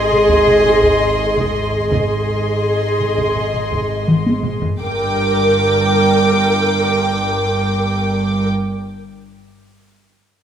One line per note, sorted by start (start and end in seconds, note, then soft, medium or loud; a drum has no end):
0.00 1.87 G#1 medium
0.00 1.88 G#2 medium
0.00 1.87 G#4 medium
0.00 1.88 D#5 medium
0.00 1.88 C6 medium
0.11 taiko low-mid soft
0.29 taiko medium
0.47 taiko low-mid medium
0.66 taiko low-mid soft
0.83 taiko medium
1.37 taiko medium
1.91 4.57 G#1 medium
1.91 4.57 G#2 medium
1.91 4.57 G#4 medium
1.91 4.57 D#5 soft
1.91 4.57 C6 soft
1.91 taiko medium
3.00 taiko low-mid soft
3.18 taiko medium
3.36 taiko low-mid soft
3.54 taiko low-mid soft
3.72 taiko medium
4.08 taiko mid medium
4.26 taiko high medium
4.44 taiko low-mid medium
4.62 taiko low medium
4.81 8.46 G1 medium
4.81 8.46 G2 medium
4.81 8.46 A#4 medium
4.81 8.46 G5 medium
4.81 7.30 D6 medium
4.81 8.46 D6 medium
5.54 7.30 G6 soft